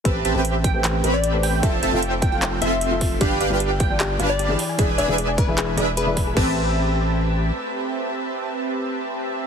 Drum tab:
CC |--------|--------|--------|--------|
HH |xxxxxxxo|xxxxxxxo|xxxxxxxo|xxxxxxxo|
CP |----x---|----x---|----x---|----x---|
BD |o--o----|o--o---o|o--o----|o--o---o|

CC |x-------|--------|
HH |--------|--------|
CP |--------|--------|
BD |o-------|--------|